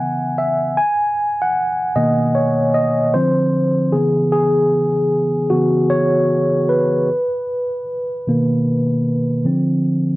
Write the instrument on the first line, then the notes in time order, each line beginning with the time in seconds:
tine electric piano
Already playing: C#3 E3 B3 F#5 G#5
0.38 E5
0.77 G#5
1.42 F#5
1.96 B2 D#3 A#3 D#5
2.35 C#5
2.74 D#5
3.14 D3 F3 C4 C5
3.92 C#3 E3 B3 G#4
4.32 G#4
5.50 C#3 E3 B3 F#4
5.90 C#5
6.69 B4
8.27 B2 D#3 A#3
9.45 D3 F3 C4